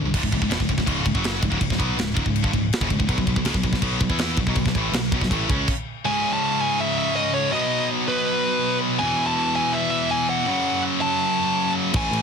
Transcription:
0.05 G2 D3
0.14 C#1 C#2 G#2, kick, crash
0.23 C#1 C#2 G#2, kick
0.32 C#1 C#2 G#2, kick, crash
0.41 C#1 C#2 G#2, kick
0.49 E1 E2 B2, snare, crash
0.59 C#1 C#2 G#2, kick
0.69 C#1 C#2 G#2, kick, crash
0.78 C#1 C#2 G#2, kick, snare
0.86 C#1 C#2 G#2 C#3, kick, crash
1.05 C#1 C#2 G#2, kick, crash
1.14 F#1 F#2 C#3 F#3, kick
1.24 snare, crash
1.42 C#1 C#2 G#2, kick, crash
1.50 C#1 C#2 G#2, kick
1.61 C#1 C#2 G#2, kick, crash
1.70 C#1 C#2 G#2, kick, snare
1.78 B1 B2 F#3 B3, kick, crash
1.97 C#1 C#2 G#2, snare, crash
2.14 C#1 C#2 G#2, kick, crash
2.25 C#1 C#2 G#2, kick
2.36 crash
2.44 G1 G2 D3, kick
2.53 C#1 C#2 G#2, kick, crash
2.73 snare, crash
2.80 F#1 F#2 C#3, kick
2.89 C#1 C#2 G#2, kick, crash
2.99 C#1 C#2 G#2, kick
3.08 B1 B2 F#3, kick, crash
3.18 B1 B2 F#3, kick
3.26 B1 B2 F#3, kick, crash
3.36 B1 B2 F#3, kick
3.45 C#2 C#3 G#3, snare, crash
3.54 B1 B2 F#3, kick
3.63 B1 B2 F#3, kick, crash
3.72 B1 B2 F#3, kick, snare
3.82 B1 B2 F#3 B3, kick, crash
4.00 B1 B2 F#3, kick, crash
4.09 E2 E3 B3 E4, kick
4.18 snare, crash
4.36 B1 B2 F#3, kick, crash
4.47 B1 B2 F#3, kick
4.55 B1 B2 F#3, kick, crash
4.66 B1 B2 F#3, kick, snare
4.75 A1 A2 E3 A3, kick, crash
4.92 B1, snare, crash
4.97 B2 F#3
5.12 B1 B2 F#3, kick, crash
5.21 B1 B2 F#3, kick, snare
5.30 A1 A2 E3 A3, kick, crash
5.49 C#2 C#3 G#3 C#4, kick, crash
5.68 kick, crash
6.05 C#2 G#2 C#3 G#5
6.33 A5
6.61 G#5
6.80 E5
6.98 E5
7.16 D#5
7.34 C#5
7.51 B2 F#3 B3 D#5
8.08 B4
8.99 E2 B2 E3 G#5
9.27 A5
9.56 G#5
9.73 E5
9.90 E5
10.11 G#5
10.29 F#5
10.46 F#2 C#3 F#3 F#5
11.01 A5
11.93 A1 A2 E3 A3 G#5, kick, crash
12.11 A1, crash

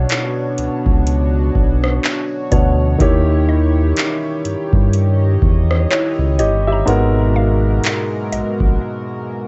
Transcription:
Already playing: B2 B3 D4 F#4 C#5
0.09 clap, closed hi-hat
0.58 C#2, closed hi-hat
0.86 C#2, kick
1.07 closed hi-hat
1.55 B1, kick
1.84 cross-stick
2.04 clap
2.51 D2 B2 B3 D4 F#4 C#5, kick, closed hi-hat
2.98 D#2 D#3 A#3 E4 G4 C#5, kick, closed hi-hat
3.48 D#5
3.96 clap, closed hi-hat
4.45 G2, closed hi-hat
4.73 G2, kick
4.94 D#5, closed hi-hat
5.42 E2, kick
5.71 cross-stick
5.91 E4 C#5, clap
6.19 C#2
6.39 G1 G4 C#5 D#5, closed hi-hat
6.67 G4 E5
6.72 A#5
6.85 G#1 G#2 B2 G#3 B3 F#4 A#4, closed hi-hat
6.89 A#4
7.36 F5
7.84 clap, closed hi-hat
8.32 A#1 D#5, closed hi-hat
8.60 A#1, kick

